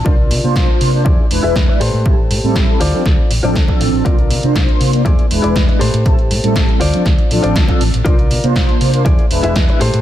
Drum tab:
HH |--o---o---o---o-|--o---o---o---o-|xxoxxxoxxxoxxxox|xxoxxxoxxxoxxxox|
SD |----o-------o---|----o---o---o---|----o-------o---|----o---o---o---|
BD |o---o---o---o---|o---o---o---oo--|o---o---o---o---|o---o---o---oo--|

HH |xxoxxxoxxxoxxxox|
SD |----o-------o---|
BD |o---o---o---o---|